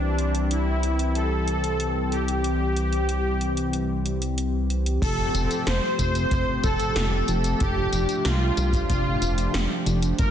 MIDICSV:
0, 0, Header, 1, 6, 480
1, 0, Start_track
1, 0, Key_signature, -1, "major"
1, 0, Tempo, 645161
1, 1818, Time_signature, 4, 2, 24, 8
1, 7668, End_track
2, 0, Start_track
2, 0, Title_t, "Digital synth lead"
2, 0, Program_c, 0, 84
2, 3736, Note_on_c, 0, 69, 113
2, 4187, Note_off_c, 0, 69, 0
2, 4217, Note_on_c, 0, 72, 120
2, 4452, Note_off_c, 0, 72, 0
2, 4456, Note_on_c, 0, 72, 123
2, 4933, Note_off_c, 0, 72, 0
2, 4938, Note_on_c, 0, 69, 118
2, 5653, Note_off_c, 0, 69, 0
2, 5657, Note_on_c, 0, 67, 103
2, 6133, Note_off_c, 0, 67, 0
2, 6137, Note_on_c, 0, 65, 102
2, 6614, Note_off_c, 0, 65, 0
2, 6619, Note_on_c, 0, 65, 92
2, 7309, Note_off_c, 0, 65, 0
2, 7577, Note_on_c, 0, 70, 112
2, 7668, Note_off_c, 0, 70, 0
2, 7668, End_track
3, 0, Start_track
3, 0, Title_t, "Supersaw synth"
3, 0, Program_c, 1, 81
3, 0, Note_on_c, 1, 62, 99
3, 378, Note_on_c, 1, 64, 110
3, 393, Note_off_c, 1, 62, 0
3, 856, Note_on_c, 1, 69, 127
3, 873, Note_off_c, 1, 64, 0
3, 1578, Note_on_c, 1, 67, 117
3, 1599, Note_off_c, 1, 69, 0
3, 3229, Note_off_c, 1, 67, 0
3, 3737, Note_on_c, 1, 69, 114
3, 4188, Note_off_c, 1, 69, 0
3, 4217, Note_on_c, 1, 72, 117
3, 4448, Note_off_c, 1, 72, 0
3, 4457, Note_on_c, 1, 72, 127
3, 4937, Note_on_c, 1, 69, 115
3, 4952, Note_off_c, 1, 72, 0
3, 5658, Note_on_c, 1, 67, 108
3, 5679, Note_off_c, 1, 69, 0
3, 6139, Note_on_c, 1, 65, 100
3, 6152, Note_off_c, 1, 67, 0
3, 6610, Note_off_c, 1, 65, 0
3, 6619, Note_on_c, 1, 65, 88
3, 7309, Note_off_c, 1, 65, 0
3, 7578, Note_on_c, 1, 70, 112
3, 7668, Note_off_c, 1, 70, 0
3, 7668, End_track
4, 0, Start_track
4, 0, Title_t, "Analog synth pad"
4, 0, Program_c, 2, 89
4, 0, Note_on_c, 2, 52, 85
4, 0, Note_on_c, 2, 55, 76
4, 0, Note_on_c, 2, 60, 73
4, 0, Note_on_c, 2, 67, 87
4, 3708, Note_off_c, 2, 52, 0
4, 3708, Note_off_c, 2, 55, 0
4, 3708, Note_off_c, 2, 60, 0
4, 3708, Note_off_c, 2, 67, 0
4, 3737, Note_on_c, 2, 53, 86
4, 3737, Note_on_c, 2, 57, 79
4, 3737, Note_on_c, 2, 67, 90
4, 3739, Note_on_c, 2, 60, 77
4, 5639, Note_off_c, 2, 60, 0
4, 5661, Note_on_c, 2, 62, 75
4, 7548, Note_off_c, 2, 57, 0
4, 7548, Note_off_c, 2, 67, 0
4, 7560, Note_off_c, 2, 62, 0
4, 7578, Note_on_c, 2, 58, 76
4, 7578, Note_on_c, 2, 62, 78
4, 7578, Note_on_c, 2, 67, 96
4, 7668, Note_off_c, 2, 53, 0
4, 7668, Note_off_c, 2, 58, 0
4, 7668, Note_off_c, 2, 62, 0
4, 7668, Note_off_c, 2, 67, 0
4, 7668, End_track
5, 0, Start_track
5, 0, Title_t, "Analog synth bass"
5, 0, Program_c, 3, 38
5, 0, Note_on_c, 3, 36, 94
5, 3714, Note_off_c, 3, 36, 0
5, 3734, Note_on_c, 3, 29, 99
5, 3936, Note_off_c, 3, 29, 0
5, 3977, Note_on_c, 3, 29, 98
5, 4078, Note_off_c, 3, 29, 0
5, 4217, Note_on_c, 3, 29, 88
5, 4318, Note_off_c, 3, 29, 0
5, 4455, Note_on_c, 3, 29, 104
5, 4657, Note_off_c, 3, 29, 0
5, 4697, Note_on_c, 3, 29, 84
5, 4798, Note_off_c, 3, 29, 0
5, 4939, Note_on_c, 3, 29, 94
5, 5039, Note_off_c, 3, 29, 0
5, 5178, Note_on_c, 3, 29, 94
5, 5378, Note_off_c, 3, 29, 0
5, 5418, Note_on_c, 3, 29, 101
5, 5618, Note_off_c, 3, 29, 0
5, 5661, Note_on_c, 3, 29, 96
5, 5859, Note_off_c, 3, 29, 0
5, 5898, Note_on_c, 3, 29, 85
5, 5998, Note_off_c, 3, 29, 0
5, 6138, Note_on_c, 3, 36, 99
5, 6338, Note_off_c, 3, 36, 0
5, 6379, Note_on_c, 3, 36, 101
5, 6579, Note_off_c, 3, 36, 0
5, 6620, Note_on_c, 3, 29, 87
5, 6819, Note_off_c, 3, 29, 0
5, 6859, Note_on_c, 3, 29, 90
5, 7058, Note_off_c, 3, 29, 0
5, 7099, Note_on_c, 3, 29, 81
5, 7199, Note_off_c, 3, 29, 0
5, 7339, Note_on_c, 3, 29, 102
5, 7538, Note_off_c, 3, 29, 0
5, 7582, Note_on_c, 3, 31, 104
5, 7668, Note_off_c, 3, 31, 0
5, 7668, End_track
6, 0, Start_track
6, 0, Title_t, "Drums"
6, 138, Note_on_c, 9, 42, 58
6, 212, Note_off_c, 9, 42, 0
6, 258, Note_on_c, 9, 42, 60
6, 332, Note_off_c, 9, 42, 0
6, 379, Note_on_c, 9, 42, 90
6, 453, Note_off_c, 9, 42, 0
6, 619, Note_on_c, 9, 42, 65
6, 693, Note_off_c, 9, 42, 0
6, 739, Note_on_c, 9, 42, 62
6, 813, Note_off_c, 9, 42, 0
6, 858, Note_on_c, 9, 42, 78
6, 933, Note_off_c, 9, 42, 0
6, 1098, Note_on_c, 9, 42, 59
6, 1172, Note_off_c, 9, 42, 0
6, 1219, Note_on_c, 9, 42, 62
6, 1293, Note_off_c, 9, 42, 0
6, 1338, Note_on_c, 9, 42, 88
6, 1412, Note_off_c, 9, 42, 0
6, 1578, Note_on_c, 9, 42, 61
6, 1653, Note_off_c, 9, 42, 0
6, 1698, Note_on_c, 9, 42, 61
6, 1773, Note_off_c, 9, 42, 0
6, 1818, Note_on_c, 9, 42, 89
6, 1892, Note_off_c, 9, 42, 0
6, 2057, Note_on_c, 9, 42, 65
6, 2132, Note_off_c, 9, 42, 0
6, 2177, Note_on_c, 9, 42, 61
6, 2251, Note_off_c, 9, 42, 0
6, 2297, Note_on_c, 9, 42, 90
6, 2372, Note_off_c, 9, 42, 0
6, 2537, Note_on_c, 9, 42, 66
6, 2612, Note_off_c, 9, 42, 0
6, 2657, Note_on_c, 9, 42, 65
6, 2732, Note_off_c, 9, 42, 0
6, 2778, Note_on_c, 9, 42, 87
6, 2852, Note_off_c, 9, 42, 0
6, 3018, Note_on_c, 9, 42, 64
6, 3092, Note_off_c, 9, 42, 0
6, 3138, Note_on_c, 9, 42, 65
6, 3212, Note_off_c, 9, 42, 0
6, 3257, Note_on_c, 9, 42, 91
6, 3332, Note_off_c, 9, 42, 0
6, 3498, Note_on_c, 9, 42, 64
6, 3572, Note_off_c, 9, 42, 0
6, 3618, Note_on_c, 9, 42, 67
6, 3693, Note_off_c, 9, 42, 0
6, 3734, Note_on_c, 9, 36, 118
6, 3738, Note_on_c, 9, 42, 96
6, 3738, Note_on_c, 9, 49, 108
6, 3738, Note_on_c, 9, 54, 31
6, 3809, Note_off_c, 9, 36, 0
6, 3813, Note_off_c, 9, 42, 0
6, 3813, Note_off_c, 9, 49, 0
6, 3813, Note_off_c, 9, 54, 0
6, 3978, Note_on_c, 9, 42, 69
6, 3978, Note_on_c, 9, 54, 73
6, 4052, Note_off_c, 9, 42, 0
6, 4052, Note_off_c, 9, 54, 0
6, 4097, Note_on_c, 9, 42, 69
6, 4097, Note_on_c, 9, 54, 41
6, 4172, Note_off_c, 9, 42, 0
6, 4172, Note_off_c, 9, 54, 0
6, 4217, Note_on_c, 9, 38, 121
6, 4217, Note_on_c, 9, 42, 102
6, 4217, Note_on_c, 9, 54, 31
6, 4292, Note_off_c, 9, 38, 0
6, 4292, Note_off_c, 9, 42, 0
6, 4292, Note_off_c, 9, 54, 0
6, 4455, Note_on_c, 9, 36, 63
6, 4457, Note_on_c, 9, 42, 68
6, 4457, Note_on_c, 9, 54, 72
6, 4529, Note_off_c, 9, 36, 0
6, 4531, Note_off_c, 9, 42, 0
6, 4531, Note_off_c, 9, 54, 0
6, 4577, Note_on_c, 9, 42, 72
6, 4577, Note_on_c, 9, 54, 41
6, 4651, Note_off_c, 9, 42, 0
6, 4651, Note_off_c, 9, 54, 0
6, 4697, Note_on_c, 9, 36, 110
6, 4697, Note_on_c, 9, 42, 88
6, 4697, Note_on_c, 9, 54, 30
6, 4771, Note_off_c, 9, 36, 0
6, 4771, Note_off_c, 9, 42, 0
6, 4771, Note_off_c, 9, 54, 0
6, 4937, Note_on_c, 9, 42, 66
6, 4937, Note_on_c, 9, 54, 76
6, 4939, Note_on_c, 9, 36, 115
6, 5011, Note_off_c, 9, 42, 0
6, 5011, Note_off_c, 9, 54, 0
6, 5014, Note_off_c, 9, 36, 0
6, 5056, Note_on_c, 9, 42, 73
6, 5056, Note_on_c, 9, 54, 44
6, 5130, Note_off_c, 9, 42, 0
6, 5130, Note_off_c, 9, 54, 0
6, 5177, Note_on_c, 9, 38, 120
6, 5177, Note_on_c, 9, 42, 97
6, 5177, Note_on_c, 9, 54, 31
6, 5251, Note_off_c, 9, 38, 0
6, 5251, Note_off_c, 9, 42, 0
6, 5251, Note_off_c, 9, 54, 0
6, 5416, Note_on_c, 9, 42, 69
6, 5416, Note_on_c, 9, 54, 76
6, 5491, Note_off_c, 9, 42, 0
6, 5491, Note_off_c, 9, 54, 0
6, 5537, Note_on_c, 9, 42, 74
6, 5537, Note_on_c, 9, 54, 41
6, 5611, Note_off_c, 9, 42, 0
6, 5611, Note_off_c, 9, 54, 0
6, 5657, Note_on_c, 9, 42, 92
6, 5657, Note_on_c, 9, 54, 30
6, 5660, Note_on_c, 9, 36, 124
6, 5731, Note_off_c, 9, 42, 0
6, 5731, Note_off_c, 9, 54, 0
6, 5735, Note_off_c, 9, 36, 0
6, 5897, Note_on_c, 9, 42, 72
6, 5897, Note_on_c, 9, 54, 69
6, 5972, Note_off_c, 9, 42, 0
6, 5972, Note_off_c, 9, 54, 0
6, 6018, Note_on_c, 9, 42, 70
6, 6018, Note_on_c, 9, 54, 39
6, 6092, Note_off_c, 9, 42, 0
6, 6092, Note_off_c, 9, 54, 0
6, 6138, Note_on_c, 9, 38, 127
6, 6138, Note_on_c, 9, 42, 106
6, 6138, Note_on_c, 9, 54, 32
6, 6212, Note_off_c, 9, 38, 0
6, 6212, Note_off_c, 9, 42, 0
6, 6212, Note_off_c, 9, 54, 0
6, 6378, Note_on_c, 9, 42, 68
6, 6378, Note_on_c, 9, 54, 74
6, 6452, Note_off_c, 9, 42, 0
6, 6452, Note_off_c, 9, 54, 0
6, 6493, Note_on_c, 9, 36, 115
6, 6498, Note_on_c, 9, 42, 73
6, 6498, Note_on_c, 9, 54, 42
6, 6568, Note_off_c, 9, 36, 0
6, 6573, Note_off_c, 9, 42, 0
6, 6573, Note_off_c, 9, 54, 0
6, 6619, Note_on_c, 9, 36, 124
6, 6619, Note_on_c, 9, 42, 94
6, 6619, Note_on_c, 9, 54, 29
6, 6693, Note_off_c, 9, 42, 0
6, 6693, Note_off_c, 9, 54, 0
6, 6694, Note_off_c, 9, 36, 0
6, 6859, Note_on_c, 9, 42, 71
6, 6859, Note_on_c, 9, 54, 70
6, 6933, Note_off_c, 9, 42, 0
6, 6933, Note_off_c, 9, 54, 0
6, 6978, Note_on_c, 9, 42, 72
6, 6978, Note_on_c, 9, 54, 41
6, 7052, Note_off_c, 9, 42, 0
6, 7052, Note_off_c, 9, 54, 0
6, 7098, Note_on_c, 9, 38, 124
6, 7098, Note_on_c, 9, 42, 96
6, 7098, Note_on_c, 9, 54, 30
6, 7173, Note_off_c, 9, 38, 0
6, 7173, Note_off_c, 9, 42, 0
6, 7173, Note_off_c, 9, 54, 0
6, 7339, Note_on_c, 9, 42, 70
6, 7339, Note_on_c, 9, 54, 69
6, 7413, Note_off_c, 9, 42, 0
6, 7413, Note_off_c, 9, 54, 0
6, 7458, Note_on_c, 9, 42, 73
6, 7458, Note_on_c, 9, 54, 42
6, 7533, Note_off_c, 9, 42, 0
6, 7533, Note_off_c, 9, 54, 0
6, 7578, Note_on_c, 9, 42, 98
6, 7578, Note_on_c, 9, 54, 27
6, 7582, Note_on_c, 9, 36, 125
6, 7652, Note_off_c, 9, 42, 0
6, 7652, Note_off_c, 9, 54, 0
6, 7657, Note_off_c, 9, 36, 0
6, 7668, End_track
0, 0, End_of_file